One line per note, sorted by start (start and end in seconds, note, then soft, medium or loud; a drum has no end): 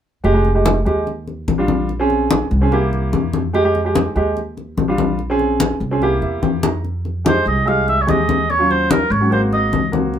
0.24 0.82 F1 medium
0.24 0.31 G#3 medium
0.24 0.32 D#4 medium
0.24 0.32 G4 medium
0.24 high conga soft
0.33 0.48 G#3 medium
0.33 0.49 D#4 medium
0.33 0.49 G4 medium
0.45 high conga soft
0.54 0.76 G#3 medium
0.54 0.77 D#4 medium
0.54 0.77 G4 medium
0.66 high conga medium
0.85 1.44 D#2 medium
0.85 1.06 G#3 medium
0.85 1.07 D#4 medium
0.85 1.07 G4 medium
0.85 high conga soft
1.07 high conga soft
1.27 high conga soft
1.48 2.45 A#1 medium
1.48 high conga medium
1.58 1.87 G3 medium
1.58 1.87 D4 medium
1.58 1.88 F4 medium
1.68 high conga medium
1.89 high conga soft
2.00 2.43 C4 medium
2.00 2.43 C#4 medium
2.00 2.44 G#4 medium
2.10 high conga soft
2.31 high conga medium
2.51 3.09 C2 medium
2.51 high conga soft
2.61 2.72 C4 medium
2.61 2.72 C#4 medium
2.61 2.72 G#4 medium
2.72 3.38 A#3 medium
2.72 3.38 E4 medium
2.72 3.39 G4 medium
2.72 high conga soft
2.93 high conga soft
3.13 4.10 F2 medium
3.13 high conga medium
3.33 high conga medium
3.53 3.61 G#3 medium
3.53 3.62 D#4 medium
3.53 3.62 G4 loud
3.53 high conga soft
3.64 3.79 G#3 medium
3.64 3.79 D#4 medium
3.64 3.79 G4 medium
3.75 high conga soft
3.84 4.06 G#3 medium
3.84 4.07 D#4 medium
3.84 4.07 G4 medium
3.95 high conga medium
4.15 4.74 D#2 medium
4.15 4.36 G#3 medium
4.15 4.37 D#4 medium
4.15 4.37 G4 medium
4.15 high conga soft
4.37 high conga soft
4.57 high conga soft
4.77 5.75 A#1 medium
4.77 high conga medium
4.88 5.17 G3 medium
4.88 5.17 D4 medium
4.88 5.18 F4 medium
4.98 high conga medium
5.19 high conga soft
5.30 5.73 C4 medium
5.30 5.73 C#4 medium
5.30 5.74 G#4 medium
5.39 high conga soft
5.60 high conga medium
5.80 6.19 C2 medium
5.80 high conga soft
5.91 6.02 C4 medium
5.91 6.02 C#4 medium
5.91 6.02 G#4 medium
6.02 6.68 A#3 medium
6.02 6.68 E4 medium
6.02 6.68 G4 medium
6.02 high conga soft
6.22 6.41 E2 medium
6.22 6.42 E5 medium
6.22 high conga soft
6.42 7.40 F2 medium
6.42 6.62 G5 medium
6.42 high conga medium
6.63 6.83 A#5 soft
6.63 high conga medium
6.84 high conga soft
7.05 high conga soft
7.25 7.54 G#3 medium
7.25 7.54 D#4 medium
7.25 7.55 G4 medium
7.25 7.46 C5 medium
7.25 high conga medium
7.46 8.04 C2 medium
7.46 7.69 D#5 medium
7.46 high conga soft
7.65 7.95 G#3 medium
7.65 7.95 D#4 medium
7.65 7.96 G4 medium
7.65 7.88 F5 medium
7.65 high conga soft
7.88 8.03 E5 medium
7.88 high conga soft
8.01 8.11 C#5 medium
8.07 9.05 D#2 medium
8.07 8.43 G#3 medium
8.07 8.44 D#4 medium
8.07 8.44 G4 medium
8.07 8.52 D#5 medium
8.07 high conga medium
8.29 high conga medium
8.50 8.72 C#5 medium
8.50 high conga soft
8.58 9.02 F#3 medium
8.58 9.03 C#4 medium
8.58 9.03 F4 medium
8.71 8.92 C5 medium
8.71 high conga soft
8.91 9.13 A#4 medium
8.91 high conga medium
9.10 9.68 G#1 medium
9.10 9.32 C#5 medium
9.10 high conga soft
9.20 9.28 F#3 medium
9.20 9.29 C#4 medium
9.20 9.29 F#4 medium
9.31 9.74 A#3 medium
9.31 9.75 C4 medium
9.31 9.75 F#4 medium
9.31 9.42 C5 medium
9.31 high conga soft
9.53 9.91 D#5 medium
9.53 high conga soft
9.72 10.19 C#2 medium
9.72 high conga medium
9.92 10.13 A#3 medium
9.92 10.14 C4 medium
9.92 10.14 F#4 medium
9.92 high conga medium
10.14 high conga soft